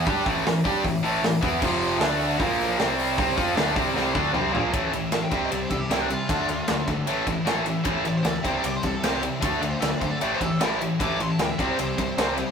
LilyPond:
<<
  \new Staff \with { instrumentName = "Lead electric guitar" } { \time 4/4 \key a \phrygian \tempo 4 = 153 r1 | r1 | r1 | r4 a''16 g''16 e''16 dis''16 d''16 c''16 a'16 g'16 e'16 d'16 f'8~ |
f'4. r2 r8 | r8 d''16 c''16 a'16 d''16 c''16 a'16 d''16 c''16 a'8 g'8 r8 | r8 d''16 c''16 a'16 d''16 c''16 a'16 d''16 c''16 a'8 e'8 r8 | d'''8 c'''16 a''16 g''16 e''16 d''16 c''16 c''2 | }
  \new Staff \with { instrumentName = "Distorted electric guitar" } { \clef bass \time 4/4 \key a \phrygian <g d' g'>8 <a, e a>8 <a, e>8 <g d' g'>8 <a, e>8 <a, e a>8 <a, e>8 <e b e'>8 | <f, c f>4 <d a d'>4 <bes, f bes>4 <c g c'>4 | <c g c'>8 <f c' f'>8 <d a d'>8 <c g c'>8 <c g c'>8 <d a d'>8 <c g c'>8 <bes, f bes>8 | <a, e a c' e'>4. <c e g c' e'>2~ <c e g c' e'>8 |
<d a d' f'>2 <a, e a c' e'>2 | <a, e a c' e'>4. <c e g c' e'>2~ <c e g c' e'>8 | <d a d' f'>2 <a, e a c' e'>2 | <a, e a c' e'>4. <c e g c' e'>2~ <c e g c' e'>8 | }
  \new Staff \with { instrumentName = "Distorted electric guitar" } { \clef bass \time 4/4 \key a \phrygian <g d' g'>8 <a, e a>8 <a, e>8 <g d' g'>8 <a, e>8 <a, e a>8 <a, e>8 <e b e'>8 | <f, c f>4 <d a d'>4 <bes, f bes>4 <c g c'>4 | <c g c'>8 <f c' f'>8 <d a d'>8 <c g c'>8 <c g c'>8 <d a d'>8 <c g c'>8 <bes, f bes>8 | <a, e a>8 <a, e>8 <a, e>8 <c g c'>8 <c g>8 <c g>8 <c g c'>8 <c g>8 |
<d a d'>8 <d a>8 <d a>8 <d a>8 <a, e a>8 <a, e>8 <a, e a>8 <a, e>8 | <a, e a>8 <a, e>8 <a, e>8 <c g c'>8 <c g>8 <c g>8 <c g c'>8 <c g>8 | <d a d'>8 <d a>8 <d a>8 <d a>8 <a, e a>8 <a, e>8 <a, e a>8 <a, e>8 | <a, e a>8 <a, e>8 <a, e>8 <c g c'>8 <c g>8 <c g>8 <c g c'>8 <c g>8 | }
  \new Staff \with { instrumentName = "Overdriven electric guitar" } { \clef bass \time 4/4 \key a \phrygian <g d' g'>8 <a, e a>8 <a, e>8 <g d' g'>8 <a, e>8 <a, e a>8 <a, e>8 <e b e'>8 | <f, c f>4 <d a d'>4 <bes, f bes>4 <c g c'>4 | <c g c'>8 <f c' f'>8 <d a d'>8 <c g c'>8 <c g c'>8 <d a d'>8 <c g c'>8 <bes, f bes>8 | <a, e a>8 <a, e>8 <a, e>8 <c g c'>8 <c g>8 <c g>8 <c g c'>8 <c g>8 |
<d a d'>8 <d a>8 <d a>8 <d a>8 <a, e a>8 <a, e>8 <a, e a>8 <a, e>8 | <a, e a>8 <a, e>8 <a, e>8 <c g c'>8 <c g>8 <c g>8 <c g c'>8 <c g>8 | <d a d'>8 <d a>8 <d a>8 <d a>8 <a, e a>8 <a, e>8 <a, e a>8 <a, e>8 | <a, e a>8 <a, e>8 <a, e>8 <c g c'>8 <c g>8 <c g>8 <c g c'>8 <c g>8 | }
  \new Staff \with { instrumentName = "Picked electric bass" } { \clef bass \time 4/4 \key a \phrygian g,8 a,,8 a,,8 g,8 a,,8 a,,8 a,,8 e,8 | f,,4 d,4 bes,,4 c,4 | c,8 f,8 d,8 c,8 c,8 d,8 c,8 bes,,8 | a,,8 a,,8 a,,8 c,8 c,8 c,8 c,4 |
d,8 d,8 d,8 gis,,8 a,,8 a,,8 a,,4 | a,,8 a,,8 d,8 c,8 c,8 c,8 c,4 | d,8 d,8 d,8 d8 a,,8 a,,8 a,,4 | a,,8 a,,8 d,8 c,8 c,8 c,8 c,4 | }
  \new DrumStaff \with { instrumentName = "Drums" } \drummode { \time 4/4 <hho bd>8 <hho bd>8 <hho sn>8 <hho bd>8 <hho bd>8 hho8 <hho sn>8 <hho bd>8 | <cymc bd>8 hho8 <hho sn>8 hho8 <hho bd>8 <hho sn>8 <hho sn>8 hho8 | <hho bd>8 <hho bd>8 <hho sn>8 <hho bd>8 sn8 bd8 toml8 tomfh8 | <bd cymr>8 cymr8 <cymr sn>8 <bd cymr>8 cymr8 <bd cymr>8 <cymr sn>8 cymr8 |
<bd cymr>8 cymr8 <cymr sn>8 <bd cymr>8 cymr8 <bd cymr sn>8 <cymr sn>8 cymr8 | <bd cymr>8 cymr8 <cymr sn>8 <bd cymr>8 cymr8 <bd cymr sn>8 <cymr sn>8 cymr8 | <bd cymr>8 cymr8 <cymr sn>8 <bd cymr>8 cymr8 <bd cymr>8 <cymr sn>8 cymr8 | <bd cymr>8 cymr8 <cymr sn>8 <bd cymr>8 cymr8 <bd cymr>8 <cymr sn>8 cymr8 | }
>>